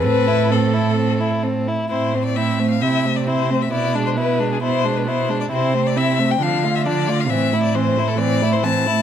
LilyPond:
<<
  \new Staff \with { instrumentName = "Violin" } { \time 4/4 \key a \minor \tempo 4 = 134 b'4 a'2 r4 | c''8. d''16 e''8. f''16 e''8. d''16 c''8. e''16 | d''8. c''16 b'8. gis'16 c''8. b'16 c''8. d''16 | c''8. d''16 e''8. g''16 f''8. e''16 d''8. f''16 |
e''8. d''16 c''8. a'16 d''8. c''16 a''4 | }
  \new Staff \with { instrumentName = "Violin" } { \time 4/4 \key a \minor c'8 e'8 c'8 e'8 c'8 e'8 c'8 e'8 | e'8 c'8 e'8 c'8 e'8 c'8 e'8 c'8 | e'8 d'8 e'8 d'8 e'8 d'8 e'8 d'8 | e'8 c'8 e'8 c'8 d'8 f'8 d'8 f'8 |
c'8 e'8 c'8 e'8 c'8 e'8 c'8 e'8 | }
  \new Staff \with { instrumentName = "Viola" } { \time 4/4 \key a \minor a'2.~ a'8 r8 | c'8 a8 c'8 a8 c'8 a8 c'8 a8 | b8 gis8 b8 gis8 b8 gis8 b8 gis8 | c'8 a8 c'8 a8 f8 a8 f8 a8 |
e8 a8 e8 a8 e8 a8 e8 a8 | }
  \new Staff \with { instrumentName = "Cello" } { \clef bass \time 4/4 \key a \minor a,2.~ a,8 r8 | a,2 c2 | b,1 | c2 d2 |
a,1 | }
>>